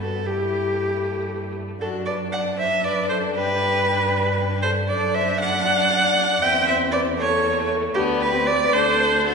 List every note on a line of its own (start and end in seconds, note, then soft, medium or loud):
0.00 1.78 G2 soft
0.00 0.22 B3 soft
0.00 0.09 F#4 soft
0.00 0.28 A4 medium
0.26 1.77 A3 medium
0.26 1.53 E4 medium
0.26 1.56 G4 medium
1.80 3.32 F#2 medium
1.80 4.85 D4 medium
1.80 2.05 F#4 medium
1.80 1.89 A4 medium
2.06 2.14 B4 medium
2.06 2.14 D5 medium
2.31 2.57 D5 medium
2.31 2.40 F#5 medium
2.58 2.66 C5 medium
2.58 2.86 E5 medium
2.83 3.10 B4 medium
2.83 3.09 D5 medium
3.08 3.33 A4 medium
3.08 3.17 C5 medium
3.34 4.90 G2 medium
3.34 4.60 G4 medium
3.34 4.61 B4 loud
4.62 4.71 A4 medium
4.62 4.70 C5 medium
4.88 6.41 F#2 medium
4.88 6.38 D4 medium
4.88 5.16 A4 medium
4.88 5.16 D5 medium
5.14 5.40 C5 medium
5.14 5.39 E5 loud
5.40 6.44 D5 loud
5.40 6.43 F#5 loud
6.42 7.93 E2 medium
6.42 7.15 C4 medium
6.42 6.68 E5 loud
6.42 6.67 G5 loud
6.67 6.77 C5 medium
6.67 6.75 E5 loud
6.92 7.01 B4 medium
6.92 7.00 D5 medium
7.18 7.92 A3 medium
7.18 7.69 A4 medium
7.18 7.69 C#5 loud
7.94 8.70 D2 medium
7.94 8.32 B3 medium
7.94 8.22 D4 medium
7.94 8.02 G4 loud
8.21 8.48 G4 medium
8.21 8.48 B4 loud
8.34 8.75 C4 medium
8.47 8.77 B4 medium
8.47 8.75 D5 loud
8.73 9.34 D2 medium
8.73 9.34 D4 medium
8.73 9.27 A4 medium
8.73 9.26 C5 loud
9.26 9.34 F#4 medium
9.26 9.34 A4 medium